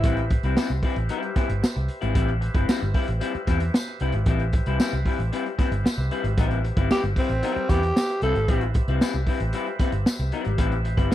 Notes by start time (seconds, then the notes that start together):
Already playing: E4 G4 B4 C5 E5
0.03 A1 G3 C4 E4 B4, kick, closed hi-hat
0.17 closed hi-hat
0.30 muted clean electric guitar stroke, kick, closed hi-hat
0.43 C2 G3 C4 E4 B4, closed hi-hat
0.57 G3 C4 E4 B4, snare, tambourine
0.70 C2, muted clean electric guitar stroke, closed hi-hat
0.83 G3 C4 E4 B4, kick, open hi-hat
0.96 A1, muted clean electric guitar stroke, closed hi-hat
1.09 G3 C4 E4 B4, closed hi-hat
1.23 muted clean electric guitar stroke, closed hi-hat
1.36 G3 C4 E4 B4, muted fingered electric bass stroke, kick, snare, closed hi-hat
1.49 G1, muted clean electric guitar stroke, closed hi-hat
1.62 muted clean electric guitar stroke, muted fingered electric bass stroke, snare, tambourine
1.76 C2, muted clean electric guitar stroke, closed hi-hat
1.88 closed hi-hat
2.01 G#1 G3 C4 E4 B4, closed hi-hat
2.14 A1 G3 C4 E4 B4, kick, closed hi-hat
2.28 closed hi-hat
2.41 muted clean electric guitar stroke, closed hi-hat
2.54 G1 G3 C4 E4 B4, kick, closed hi-hat
2.68 G3 C4 E4 B4, muted fingered electric bass stroke, snare, tambourine
2.81 G1, muted clean electric guitar stroke, closed hi-hat
2.94 G3 C4 E4 B4, kick, open hi-hat
3.08 A1, muted clean electric guitar stroke, closed hi-hat
3.21 G3 C4 E4 B4, closed hi-hat
3.34 muted clean electric guitar stroke, muted fingered electric bass stroke, closed hi-hat
3.47 E2 G3 C4 E4 B4, kick, snare, closed hi-hat
3.60 muted clean electric guitar stroke, closed hi-hat
3.74 muted clean electric guitar stroke, snare, tambourine
3.87 muted clean electric guitar stroke, closed hi-hat
4.00 C2 G3 C4 E4 B4, closed hi-hat
4.12 G#1, muted clean electric guitar stroke, closed hi-hat
4.26 A1 G3 C4 E4 B4, kick, closed hi-hat
4.40 closed hi-hat
4.53 muted clean electric guitar stroke, kick, closed hi-hat
4.66 C2 G3 C4 E4 B4, closed hi-hat
4.80 G3 C4 E4 B4, snare, tambourine
4.93 C2, muted clean electric guitar stroke, closed hi-hat
5.06 G3 C4 E4 B4, kick, open hi-hat
5.19 A1, muted clean electric guitar stroke, closed hi-hat
5.33 G3 C4 E4 B4, closed hi-hat
5.46 muted clean electric guitar stroke, closed hi-hat
5.58 G3 C4 E4 B4, muted fingered electric bass stroke, kick, snare, closed hi-hat
5.71 G1, muted clean electric guitar stroke, closed hi-hat
5.84 muted fingered electric bass stroke, muted clean electric guitar stroke, snare, tambourine
5.98 C2, muted clean electric guitar stroke
6.11 G3 C4 E4 B4, closed hi-hat
6.24 G#1, muted clean electric guitar stroke, closed hi-hat
6.38 A1 G3 C4 E4 B4, kick, closed hi-hat
6.51 closed hi-hat
6.64 muted clean electric guitar stroke, closed hi-hat
6.77 G1 G3 C4 E4 B4, kick, closed hi-hat
6.91 G3 C4 E4 G4 B4, snare, tambourine
7.04 G1, muted clean electric guitar stroke, closed hi-hat
7.16 G3 C4 E4 B4, kick, open hi-hat
7.29 A1, muted clean electric guitar stroke, closed hi-hat
7.43 G3 C4 E4 B4, closed hi-hat
7.56 muted fingered electric bass stroke, muted clean electric guitar stroke, closed hi-hat
7.69 E2 G3 C4 E4 G4 B4, kick, snare, closed hi-hat
7.83 muted clean electric guitar stroke, closed hi-hat
7.96 muted clean electric guitar stroke, snare, tambourine
8.09 muted clean electric guitar stroke, closed hi-hat
8.22 C2 G3 C4 E4 A4 B4, closed hi-hat
8.35 G#1, muted clean electric guitar stroke, closed hi-hat
8.48 A1 G3 C4 E4 B4, kick, closed hi-hat
8.61 closed hi-hat
8.74 muted clean electric guitar stroke, kick, closed hi-hat
8.88 C2 G3 C4 E4 B4, closed hi-hat
9.01 G3 C4 E4 B4, snare, tambourine
9.13 C2, muted clean electric guitar stroke, closed hi-hat
9.27 G3 C4 E4 B4, kick, open hi-hat
9.40 A1, muted clean electric guitar stroke, closed hi-hat
9.53 G3 C4 E4 B4, closed hi-hat
9.66 muted clean electric guitar stroke, closed hi-hat
9.79 G3 C4 E4 B4, muted fingered electric bass stroke, kick, snare, closed hi-hat
9.92 G1, muted clean electric guitar stroke, closed hi-hat
10.06 muted fingered electric bass stroke, muted clean electric guitar stroke, snare, tambourine
10.19 C2, muted clean electric guitar stroke, closed hi-hat
10.32 G3 C4 E4 B4, closed hi-hat
10.45 G#1, muted clean electric guitar stroke, closed hi-hat
10.58 A1 G3 C4 E4 B4, kick, closed hi-hat
10.72 closed hi-hat
10.85 muted clean electric guitar stroke, closed hi-hat
10.97 G1 G3 C4 E4 B4, kick, closed hi-hat
11.10 G3 C4 E4 B4, snare